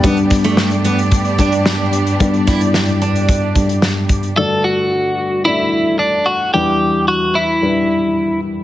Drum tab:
HH |xxxx-xxxxxxx--xx|xxxx-xxxx-xx--xx|----------------|----------------|
SD |--o-o-------o---|--o-o-------o---|----------------|----------------|
BD |o-o-----o-o-----|o-o-----o-o---o-|----------------|----------------|